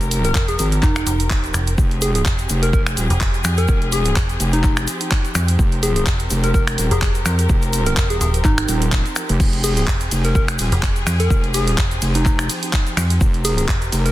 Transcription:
Already playing: wobble bass F1, string section F3 C4 G4 A#4
0.01 closed hi-hat, shaker
0.11 open hi-hat, shaker
0.24 soft synth lead A#4, closed hi-hat, shaker
0.35 fm bass F1, soft synth lead A#4, kick, clap, shaker
0.48 soft synth lead G#4, closed hi-hat, shaker
0.59 wobble bass G#1, soft synth lead G#4, open hi-hat, shaker
0.72 closed hi-hat, shaker
0.83 fm bass F1, soft synth lead D#4, kick, clap, shaker
0.96 finger snap, closed hi-hat, shaker
1.07 fm bass F1, open hi-hat, shaker
1.20 closed hi-hat, shaker
1.30 kick, clap, shaker
1.44 closed hi-hat, shaker
1.54 fm bass F1, finger snap, open hi-hat, shaker
1.67 closed hi-hat, shaker
1.78 wobble bass F1, string section G#4, kick, shaker
1.91 closed hi-hat
2.01 soft synth lead G#4, open hi-hat, shaker
2.15 soft synth lead G#4, closed hi-hat, shaker
2.26 fm bass F1, kick, clap, shaker
2.38 closed hi-hat, shaker
2.49 wobble bass F1, open hi-hat, shaker
2.63 soft synth lead A#4, closed hi-hat, shaker
2.73 soft synth lead A#4, kick, shaker
2.87 finger snap, closed hi-hat, shaker
2.97 wobble bass D#1, open hi-hat, shaker
3.10 fm bass F1, closed hi-hat, shaker
3.21 kick, clap, shaker
3.34 closed hi-hat, shaker
3.44 fm bass F2, finger snap, open hi-hat, shaker
3.57 soft synth lead A#4, closed hi-hat, shaker
3.68 wobble bass F1, kick, shaker
3.82 closed hi-hat
3.92 soft synth lead G#4, open hi-hat, shaker
4.05 closed hi-hat, shaker
4.16 fm bass F1, kick, clap, shaker
4.29 closed hi-hat, shaker
4.40 wobble bass F1, open hi-hat, shaker
4.53 soft synth lead D#4, closed hi-hat, shaker
4.63 kick, clap, shaker
4.77 finger snap, closed hi-hat, shaker
4.88 open hi-hat, shaker
5.01 closed hi-hat, shaker
5.11 kick, clap, shaker
5.25 closed hi-hat, shaker
5.35 fm bass F2, finger snap, open hi-hat, shaker
5.48 closed hi-hat, shaker
5.59 wobble bass F1, string section A#4, kick, shaker
5.72 closed hi-hat
5.83 soft synth lead G#4, open hi-hat, shaker
5.96 soft synth lead G#4, closed hi-hat, shaker
6.06 fm bass F1, kick, clap, shaker
6.19 closed hi-hat, shaker
6.30 wobble bass F1, open hi-hat, shaker
6.44 soft synth lead A#4, closed hi-hat, shaker
6.54 soft synth lead A#4, kick, shaker
6.67 finger snap, closed hi-hat, shaker
6.78 wobble bass D#1, open hi-hat, shaker
6.91 fm bass F1, soft synth lead G#4, closed hi-hat, shaker
7.02 kick, clap, shaker
7.15 closed hi-hat, shaker
7.26 fm bass F2, finger snap, open hi-hat, shaker
7.39 closed hi-hat, shaker
7.49 wobble bass F1, kick, shaker
7.62 closed hi-hat, shaker
7.73 open hi-hat, shaker
7.86 soft synth lead A#4, closed hi-hat, shaker
7.97 fm bass F1, soft synth lead A#4, kick, clap, shaker
8.10 soft synth lead G#4, closed hi-hat, shaker
8.21 fm bass D#1, soft synth lead G#4, open hi-hat, shaker
8.34 closed hi-hat, shaker
8.44 fm bass G#1, soft synth lead D#4, kick, clap, shaker
8.58 finger snap, closed hi-hat, shaker
8.68 wobble bass D#1, open hi-hat, shaker
8.82 closed hi-hat, shaker
8.92 kick, clap, shaker
9.06 closed hi-hat, shaker
9.16 finger snap, open hi-hat, shaker
9.29 wobble bass F1, closed hi-hat, shaker
9.40 wobble bass F1, string section G#4, kick, crash, shaker
9.53 closed hi-hat
9.64 soft synth lead G#4, open hi-hat, ride, shaker
9.77 soft synth lead G#4, closed hi-hat, shaker
9.87 fm bass F1, kick, clap, shaker
10.00 closed hi-hat, shaker
10.11 wobble bass F1, open hi-hat, ride, shaker
10.24 soft synth lead A#4, closed hi-hat, shaker
10.35 soft synth lead A#4, kick, shaker
10.48 finger snap, closed hi-hat, shaker
10.59 wobble bass D#1, open hi-hat, ride, shaker
10.72 fm bass F1, closed hi-hat, shaker
10.83 kick, clap, shaker
10.96 closed hi-hat, shaker
11.07 fm bass F2, finger snap, open hi-hat, ride, shaker
11.20 soft synth lead A#4, closed hi-hat, shaker
11.30 wobble bass F1, kick, shaker
11.44 closed hi-hat
11.54 soft synth lead G#4, open hi-hat, ride, shaker
11.67 closed hi-hat, shaker
11.78 fm bass F1, kick, clap, shaker
11.91 closed hi-hat, shaker
12.02 wobble bass F1, open hi-hat, ride, shaker
12.14 soft synth lead D#4, closed hi-hat, shaker
12.26 kick, clap, shaker
12.39 finger snap, closed hi-hat, shaker
12.49 open hi-hat, ride, shaker
12.63 closed hi-hat, shaker
12.73 kick, clap, shaker
12.87 closed hi-hat, shaker
12.97 fm bass F2, finger snap, open hi-hat, ride, shaker
13.10 closed hi-hat, shaker
13.21 wobble bass F1, string section A#4, kick, shaker
13.34 closed hi-hat
13.45 soft synth lead G#4, open hi-hat, ride, shaker
13.58 soft synth lead G#4, closed hi-hat, shaker
13.68 fm bass F1, kick, clap, shaker
13.82 closed hi-hat, shaker
13.92 wobble bass F1, open hi-hat, ride, shaker
14.06 soft synth lead A#4, closed hi-hat, shaker

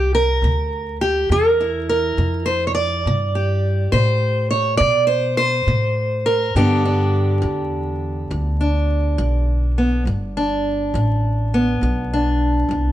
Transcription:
Already playing: upright bass C2, steel-string acoustic guitar G4
0.15 steel-string acoustic guitar A#4
0.42 upright bass D2, steel-string acoustic guitar C3
1.01 steel-string acoustic guitar G4
1.29 upright bass E2, steel-string acoustic guitar C3 A#4
1.60 steel-string acoustic guitar E4
1.89 steel-string acoustic guitar A#4
2.17 upright bass F2, steel-string acoustic guitar C3
2.46 steel-string acoustic guitar C5
2.67 steel-string acoustic guitar C#5
2.75 steel-string acoustic guitar D5
3.05 upright bass G2, steel-string acoustic guitar C3
3.35 steel-string acoustic guitar G4
3.92 upright bass A2, steel-string acoustic guitar C3 C5
4.50 steel-string acoustic guitar C#5
4.77 upright bass B2, steel-string acoustic guitar C3 D5
5.07 steel-string acoustic guitar C5
5.37 steel-string acoustic guitar C5
5.67 upright bass A2, steel-string acoustic guitar C3
6.26 steel-string acoustic guitar A#4
6.55 upright bass G2, steel-string acoustic guitar G2 D3 B3 D4 G4
6.85 steel-string acoustic guitar D4
7.42 upright bass E2, steel-string acoustic guitar G2
8.31 upright bass D2, steel-string acoustic guitar G2
8.61 steel-string acoustic guitar D4
9.18 upright bass B1, steel-string acoustic guitar G2
9.78 steel-string acoustic guitar B3
10.05 upright bass G1, steel-string acoustic guitar G2
10.37 steel-string acoustic guitar D4
10.94 upright bass A1, steel-string acoustic guitar G2
11.54 steel-string acoustic guitar B3
11.81 upright bass B1, steel-string acoustic guitar G2
12.13 steel-string acoustic guitar D4
12.69 upright bass C2, steel-string acoustic guitar G2

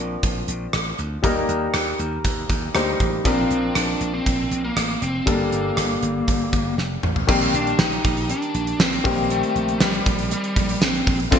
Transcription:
Already playing: slap bass A#1, grand piano F3 C4 D4 A#4
0.23 slap bass A#1, kick, closed hi-hat
0.48 slap bass A#1, closed hi-hat
0.73 slap bass A1, cross-stick, closed hi-hat
0.99 slap bass D2, closed hi-hat
1.23 slap bass D#2, grand piano G3 A#3 D#4 A#4, kick, closed hi-hat
1.49 slap bass D#2, closed hi-hat
1.74 slap bass D#2, cross-stick, closed hi-hat
1.99 slap bass D#2, closed hi-hat
2.24 slap bass D#2, kick, closed hi-hat
2.49 slap bass D#2, kick, closed hi-hat
2.74 slap bass D2, grand piano G3 A#3 D#4 C5, cross-stick, closed hi-hat
3.00 slap bass A1, kick, closed hi-hat
3.24 slap bass A#1, grand piano F3 C4 D4 A#4, lead electric guitar C4, kick, closed hi-hat
3.51 slap bass A#1, closed hi-hat
3.75 slap bass A#1, lead electric guitar D4, cross-stick, closed hi-hat
4.01 slap bass A#1, closed hi-hat
4.14 lead electric guitar C4
4.26 slap bass A#1, kick, closed hi-hat
4.51 slap bass A#1, closed hi-hat
4.65 lead electric guitar A#3
4.76 slap bass A1, cross-stick, closed hi-hat
5.02 slap bass F1, lead electric guitar C4, closed hi-hat
5.26 slap bass G1, grand piano G3 A#3 D4 A4, lead electric guitar A#3, kick, closed hi-hat
5.52 slap bass G1, closed hi-hat
5.77 slap bass G1, cross-stick, closed hi-hat
6.02 slap bass G1, closed hi-hat
6.28 slap bass G1, kick, closed hi-hat
6.53 slap bass G1, kick, closed hi-hat
6.78 slap bass F1, snare
7.03 slap bass A1, mid tom
7.16 floor tom
7.27 slap bass A#1, grand piano D#3 G3 A#3 G4, lead electric guitar C4, kick, crash
7.42 closed hi-hat
7.54 slap bass A#1, lead electric guitar D4, closed hi-hat
7.67 closed hi-hat
7.79 slap bass A#1, lead electric guitar D#4, snare, tambourine
7.92 closed hi-hat
8.04 slap bass A#1, kick, closed hi-hat
8.17 closed hi-hat
8.30 lead electric guitar D4, closed hi-hat
8.42 closed hi-hat
8.54 slap bass A#1, closed hi-hat
8.67 closed hi-hat
8.80 slap bass A#1, lead electric guitar C4, snare, tambourine
8.93 closed hi-hat
9.04 slap bass A#1, grand piano D#3 G3 C4 G4, lead electric guitar A#3, kick, open hi-hat
9.18 closed hi-hat
9.30 lead electric guitar A3, closed hi-hat
9.43 closed hi-hat
9.55 slap bass A#1, closed hi-hat
9.68 closed hi-hat
9.80 slap bass A#1, lead electric guitar G3, snare, tambourine
9.94 closed hi-hat
10.06 slap bass A#1, kick, closed hi-hat
10.19 closed hi-hat
10.31 lead electric guitar G3, closed hi-hat
10.44 closed hi-hat
10.56 slap bass A#1, kick, closed hi-hat
10.69 closed hi-hat
10.81 slap bass A#1, lead electric guitar C4, snare, tambourine
10.95 closed hi-hat
11.07 slap bass A#1, kick, open hi-hat
11.20 closed hi-hat
11.31 slap bass A#1, grand piano D3 A3 C4 F4, lead electric guitar C4, muted clean electric guitar stroke, kick, closed hi-hat

